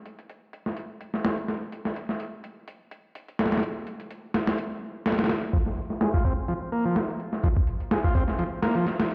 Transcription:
0.06 closed hi-hat medium
0.19 closed hi-hat soft
0.30 closed hi-hat medium
0.53 closed hi-hat medium
0.66 snare soft
0.77 closed hi-hat medium
1.01 closed hi-hat medium
1.14 snare soft
1.25 snare medium
1.25 closed hi-hat medium
1.38 closed hi-hat soft
1.48 snare soft
1.48 closed hi-hat medium
1.72 closed hi-hat medium
1.85 snare soft
1.96 closed hi-hat medium
2.09 snare soft
2.20 closed hi-hat medium
2.44 closed hi-hat medium
2.68 closed hi-hat medium
2.91 closed hi-hat medium
3.15 closed hi-hat medium
3.28 closed hi-hat soft
3.39 snare medium
3.39 closed hi-hat medium
3.46 snare medium
3.46 closed hi-hat medium
3.52 snare medium
3.52 closed hi-hat medium
3.58 snare medium
3.58 closed hi-hat medium
3.63 closed hi-hat medium
3.87 closed hi-hat medium
4.00 closed hi-hat soft
4.11 closed hi-hat medium
4.34 snare loud
4.34 closed hi-hat medium
4.47 snare loud
4.47 closed hi-hat medium
4.58 closed hi-hat medium
5.06 snare medium
5.06 closed hi-hat medium
5.12 snare medium
5.12 closed hi-hat medium
5.19 snare medium
5.19 closed hi-hat medium
5.24 snare medium
5.24 closed hi-hat medium
5.29 snare medium
5.29 closed hi-hat medium
5.53 5.58 F3 medium
5.53 kick loud
5.53 closed hi-hat medium
5.66 snare soft
5.77 closed hi-hat medium
5.90 snare soft
6.01 6.09 G#3 medium
6.01 snare loud
6.01 closed hi-hat medium
6.14 6.24 F4 medium
6.14 kick medium
6.25 6.33 C4 medium
6.25 kick medium
6.25 closed hi-hat medium
6.48 6.54 F3 medium
6.48 closed hi-hat medium
6.72 6.85 A#3 medium
6.72 closed hi-hat medium
6.85 6.96 F3 medium
6.96 snare loud
6.96 closed hi-hat medium
7.09 closed hi-hat soft
7.20 closed hi-hat medium
7.33 snare soft
7.44 7.49 F3 medium
7.44 kick loud
7.44 closed hi-hat medium
7.57 kick medium
7.67 closed hi-hat medium
7.80 closed hi-hat soft
7.91 8.00 G#3 medium
7.91 snare loud
7.91 closed hi-hat medium
8.04 8.14 F4 medium
8.04 kick medium
8.15 8.24 C4 medium
8.15 kick medium
8.15 closed hi-hat medium
8.28 snare soft
8.38 8.44 F3 medium
8.38 closed hi-hat medium
8.62 8.75 A#3 medium
8.62 snare loud
8.62 closed hi-hat medium
8.75 8.86 F3 loud
8.75 closed hi-hat soft
8.87 snare soft
8.87 closed hi-hat medium
9.00 snare loud
9.00 closed hi-hat medium
9.10 closed hi-hat soft

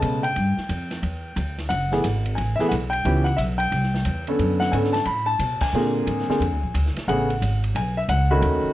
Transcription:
0.00 0.35 B2 medium
0.00 0.20 C#3 medium
0.00 0.21 G#3 medium
0.00 0.20 A3 medium
0.00 0.21 B3 medium
0.00 0.21 A5 loud
0.00 hi-hat pedal medium
0.00 ride medium
0.23 1.54 G5 loud
0.23 ride medium
0.36 0.56 G2 medium
0.36 ride medium
0.57 muted upright bass stroke soft
0.57 snare soft
0.69 1.02 F2 medium
0.69 hi-hat pedal medium
0.69 ride medium
0.91 snare medium
0.91 ride soft
1.03 1.36 E2 medium
1.03 ride medium
1.36 1.69 D2 loud
1.36 hi-hat pedal medium
1.36 ride medium
1.59 snare soft
1.59 ride soft
1.69 2.03 F#1 medium
1.69 2.39 F#5 loud
1.69 ride medium
1.92 2.03 E3 medium
1.92 2.03 A3 medium
1.92 2.03 B3 medium
1.92 2.04 G#4 medium
1.92 snare medium
2.04 2.37 G#1 medium
2.04 hi-hat pedal medium
2.04 ride medium
2.26 ride soft
2.35 2.58 A1 medium
2.35 2.59 G#5 medium
2.35 ride medium
2.56 2.69 E5 medium
2.56 muted upright bass stroke soft
2.56 snare medium
2.60 2.71 E3 medium
2.60 2.71 A3 medium
2.60 2.71 B3 medium
2.60 2.71 G#4 medium
2.69 3.04 B1 medium
2.69 2.74 F#5 medium
2.69 hi-hat pedal medium
2.69 ride medium
2.90 3.26 G5 loud
2.90 ride medium
3.05 3.38 C#2 loud
3.05 3.24 E3 medium
3.05 3.24 B3 medium
3.05 3.24 C#4 medium
3.05 3.25 G4 medium
3.05 ride medium
3.24 3.38 F#5 medium
3.24 ride soft
3.37 3.71 B1 medium
3.37 3.42 E5 medium
3.37 hi-hat pedal medium
3.37 ride medium
3.58 4.22 G5 loud
3.58 ride medium
3.72 4.05 C2 medium
3.72 ride medium
3.83 snare soft
3.94 snare medium
4.05 4.38 E2 medium
4.05 hi-hat pedal medium
4.05 ride medium
4.27 4.71 D3 medium
4.27 4.71 B3 medium
4.27 4.71 C#4 medium
4.27 4.71 A4 medium
4.27 ride soft
4.39 4.72 F#2 medium
4.39 ride medium
4.60 4.73 F#5 loud
4.60 snare medium
4.72 5.05 G#2 medium
4.72 4.93 D3 medium
4.72 4.93 B3 medium
4.72 4.93 C#4 medium
4.72 4.93 A4 medium
4.72 4.77 G#5 medium
4.72 hi-hat pedal medium
4.72 ride medium
4.84 snare soft
4.93 5.05 A5 loud
4.93 snare soft
4.93 ride medium
5.05 5.39 A2 medium
5.05 5.26 B5 medium
5.05 ride medium
5.26 5.58 A5 loud
5.39 5.60 B2 medium
5.39 hi-hat pedal medium
5.39 ride medium
5.61 6.92 G#5 loud
5.61 muted upright bass stroke soft
5.61 kick medium
5.61 crash medium
5.73 6.06 A#2 medium
5.73 6.25 D3 medium
5.73 6.25 A#3 medium
5.73 6.25 C4 medium
5.73 6.25 G#4 medium
6.07 6.27 G#2 medium
6.07 hi-hat pedal medium
6.07 ride medium
6.19 snare soft
6.28 6.40 D3 medium
6.28 6.40 A#3 medium
6.28 6.40 C4 medium
6.28 6.41 G#4 medium
6.28 muted upright bass stroke soft
6.28 snare soft
6.40 6.52 F2 medium
6.40 ride medium
6.52 6.63 D2 medium
6.63 6.74 A#1 medium
6.74 6.94 D2 medium
6.74 hi-hat pedal medium
6.74 ride medium
6.86 snare soft
6.96 muted upright bass stroke soft
6.96 snare medium
6.96 ride medium
7.08 7.40 A1 medium
7.08 7.28 C#3 medium
7.08 7.28 A3 medium
7.08 7.28 B3 medium
7.08 7.28 G#4 medium
7.08 7.59 F#5 loud
7.08 ride medium
7.30 ride medium
7.42 7.74 G#1 medium
7.42 hi-hat pedal medium
7.42 ride medium
7.64 ride medium
7.75 8.08 B1 medium
7.75 7.98 G#5 medium
7.75 ride medium
7.97 8.02 E5 medium
8.09 8.41 C#2 medium
8.09 8.31 F#5 loud
8.09 hi-hat pedal medium
8.09 ride medium
8.31 8.73 D#3 medium
8.31 8.73 A3 medium
8.31 8.73 C#4 medium
8.31 8.73 F#4 medium
8.31 8.73 B5 medium
8.42 8.62 D#2 loud
8.42 ride medium
8.64 muted upright bass stroke soft

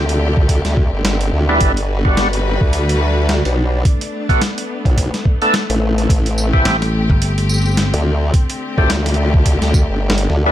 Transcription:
0.00 0.62 D2 medium
0.00 1.59 D3 medium
0.00 1.59 A3 medium
0.00 1.57 C4 medium
0.00 1.57 G4 medium
0.09 closed hi-hat soft
0.37 kick loud
0.49 kick medium
0.49 closed hi-hat medium
0.65 0.91 D2 loud
0.65 snare soft
0.65 closed hi-hat soft
0.77 kick loud
0.93 1.31 G1 medium
1.05 snare loud
1.05 closed hi-hat medium
1.21 closed hi-hat soft
1.33 1.59 D2 medium
1.49 1.72 G3 medium
1.49 1.72 B3 medium
1.49 1.72 D4 medium
1.49 1.72 E4 loud
1.61 2.15 G1 medium
1.61 3.83 G3 medium
1.61 6.06 D4 medium
1.61 3.83 F#4 medium
1.61 3.83 B4 medium
1.61 kick loud
1.61 closed hi-hat medium
1.77 closed hi-hat soft
2.05 2.28 G3 medium
2.05 2.28 B3 medium
2.05 2.28 D4 medium
2.05 2.28 F#4 medium
2.05 kick loud
2.17 2.59 G1 medium
2.17 snare loud
2.17 closed hi-hat medium
2.33 closed hi-hat soft
2.61 3.43 D2 medium
2.61 kick loud
2.73 closed hi-hat medium
2.89 closed hi-hat soft
3.29 snare loud
3.29 closed hi-hat medium
3.45 3.84 B1 medium
3.45 closed hi-hat medium
3.85 8.30 A3 medium
3.85 6.08 B3 medium
3.85 kick loud
3.85 closed hi-hat medium
4.01 closed hi-hat medium
4.29 4.42 A3 medium
4.29 4.42 B3 medium
4.29 4.42 D4 medium
4.29 4.42 F#4 medium
4.29 kick loud
4.29 closed hi-hat soft
4.42 snare loud
4.42 closed hi-hat medium
4.58 closed hi-hat medium
4.85 5.11 B1 medium
4.85 kick loud
4.85 closed hi-hat soft
4.97 kick medium
4.97 closed hi-hat medium
5.14 snare soft
5.14 closed hi-hat medium
5.25 kick loud
5.42 5.55 A3 medium
5.42 5.55 B3 medium
5.42 5.55 D4 medium
5.42 5.55 A4 loud
5.42 closed hi-hat soft
5.54 snare loud
5.54 closed hi-hat medium
5.70 6.08 A1 medium
5.70 closed hi-hat medium
5.98 closed hi-hat soft
6.09 6.64 A1 medium
6.09 10.52 C4 medium
6.09 8.32 G4 medium
6.09 kick loud
6.09 closed hi-hat medium
6.26 closed hi-hat medium
6.38 tambourine medium
6.53 6.77 A3 medium
6.53 6.77 C4 medium
6.53 6.77 E4 medium
6.53 6.77 G4 medium
6.53 kick loud
6.65 7.07 A1 medium
6.65 snare loud
6.65 closed hi-hat medium
6.82 snare medium
6.82 closed hi-hat medium
7.10 7.91 G1 loud
7.10 kick loud
7.22 closed hi-hat medium
7.38 closed hi-hat medium
7.49 tambourine medium
7.54 tambourine soft
7.58 tambourine soft
7.62 tambourine soft
7.66 tambourine soft
7.68 tambourine soft
7.71 tambourine soft
7.74 snare loud
7.74 closed hi-hat medium
7.74 tambourine soft
7.94 8.32 D2 medium
7.94 closed hi-hat medium
8.33 10.52 D3 medium
8.33 10.52 A3 medium
8.33 10.52 G4 medium
8.33 kick loud
8.33 closed hi-hat medium
8.50 closed hi-hat medium
8.78 9.59 D2 loud
8.78 8.91 A3 medium
8.78 8.91 C4 medium
8.78 8.91 D4 medium
8.78 8.91 G4 loud
8.78 kick loud
8.90 snare loud
8.90 closed hi-hat medium
9.06 snare medium
9.06 closed hi-hat medium
9.09 closed hi-hat soft
9.14 closed hi-hat soft
9.34 kick loud
9.46 kick medium
9.46 closed hi-hat medium
9.62 9.87 D2 loud
9.62 snare soft
9.62 closed hi-hat medium
9.74 kick loud
9.74 tambourine medium
9.90 10.28 G1 loud
10.10 snare loud
10.18 closed hi-hat medium
10.30 10.52 D2 loud
10.30 snare soft
10.46 10.52 G3 medium
10.46 10.52 B3 medium
10.46 10.52 D4 medium
10.46 10.52 E4 loud

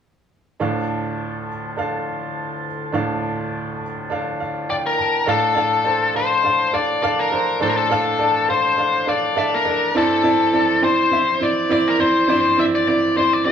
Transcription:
0.60 5.24 D2 medium
0.60 2.90 D2 medium
0.60 2.90 A2 medium
0.60 5.24 D3 soft
0.60 1.48 D4 medium
0.60 5.24 F4 soft
0.60 1.48 A4 medium
0.60 1.49 F5 medium
0.60 5.24 A5 medium
1.77 2.65 D4 medium
1.77 2.66 A4 medium
1.77 2.66 F5 medium
2.92 5.24 D2 medium
2.92 5.23 A2 medium
2.92 3.81 D4 medium
2.92 3.82 A4 medium
2.92 3.83 F5 medium
4.10 4.99 D4 medium
4.10 4.99 A4 medium
4.10 4.39 F5 medium
4.40 4.67 F5 medium
4.70 4.75 D5 medium
4.70 4.97 G5 medium
4.86 5.29 A#4 medium
4.98 5.26 A5 medium
5.26 6.11 A2 soft
5.26 5.50 D4 medium
5.26 5.50 A4 medium
5.26 6.16 A4 medium
5.26 5.51 F5 medium
5.55 5.79 D4 medium
5.55 5.80 A4 medium
5.55 5.80 F5 medium
5.84 6.08 D4 medium
5.84 6.09 A4 medium
5.84 6.09 C5 medium
6.14 6.38 D4 medium
6.14 6.38 A4 soft
6.14 6.76 C5 medium
6.14 6.39 F5 medium
6.43 6.67 D4 medium
6.43 6.68 A4 soft
6.43 6.68 F5 medium
6.73 6.96 D4 soft
6.73 6.97 A4 soft
6.73 7.01 D5 medium
6.73 6.97 F5 medium
7.02 7.26 D4 medium
7.02 7.26 A4 medium
7.02 7.20 D5 medium
7.02 7.26 F5 medium
7.19 7.59 A#4 medium
7.31 7.55 D4 medium
7.31 7.55 A4 medium
7.31 7.56 C5 medium
7.60 8.45 A2 soft
7.60 7.84 D4 medium
7.60 7.84 A4 medium
7.60 7.69 A4 medium
7.60 7.85 C5 medium
7.69 7.77 A#4 medium
7.77 8.50 A4 medium
7.90 8.13 D4 medium
7.90 8.14 A4 medium
7.90 8.14 F5 medium
8.18 8.42 D4 medium
8.18 8.43 A4 medium
8.18 8.43 D5 medium
8.47 8.71 D4 soft
8.47 8.72 A4 soft
8.47 9.10 C5 medium
8.47 8.72 F5 medium
8.77 9.01 D4 medium
8.77 9.01 A4 medium
8.77 9.02 F5 medium
9.06 9.30 D4 medium
9.06 9.31 A4 medium
9.06 9.37 D5 medium
9.06 9.31 F5 medium
9.35 9.59 D4 medium
9.35 9.60 A4 medium
9.35 9.55 D5 medium
9.35 9.60 E5 medium
9.54 9.97 A#4 medium
9.65 9.89 D4 medium
9.65 9.89 A4 medium
9.65 9.90 D5 medium
9.95 10.79 G2 medium
9.95 10.18 C4 medium
9.95 10.19 E4 medium
9.95 10.84 A4 medium
9.95 10.19 D5 medium
10.23 10.47 C4 medium
10.23 10.47 E4 medium
10.23 10.48 D5 medium
10.52 10.76 C4 medium
10.52 10.77 E4 medium
10.52 10.77 D5 medium
10.82 11.05 C4 soft
10.82 11.06 E4 soft
10.82 11.44 C5 medium
10.82 11.06 D5 medium
11.11 11.35 C4 medium
11.11 11.35 E4 soft
11.11 11.36 E5 medium
11.40 11.64 C4 medium
11.40 11.65 E4 soft
11.40 11.65 D5 medium
11.40 11.71 D5 medium
11.69 11.93 C4 medium
11.69 11.94 E4 medium
11.69 11.94 D5 medium
11.69 11.89 D5 medium
11.88 12.00 A#4 medium
11.99 12.23 C4 medium
11.99 12.23 E4 medium
11.99 12.28 C5 medium
11.99 12.24 D5 medium
12.28 13.13 G2 soft
12.28 12.52 C4 medium
12.28 12.52 E4 medium
12.28 12.60 C5 medium
12.28 12.53 D5 medium
12.57 12.81 C4 medium
12.57 12.82 E4 medium
12.57 12.82 D5 medium
12.57 12.64 E5 medium
12.75 12.87 D5 medium
12.87 13.11 C4 medium
12.87 13.11 E4 medium
12.87 13.17 D5 medium
12.87 13.11 D5 medium
13.16 13.40 C4 medium
13.16 13.40 E4 soft
13.16 13.33 C5 medium
13.16 13.41 D5 medium
13.33 13.45 D5 medium
13.45 13.52 C4 medium
13.45 13.52 E4 medium
13.45 13.52 G4 medium
13.45 13.52 E5 medium

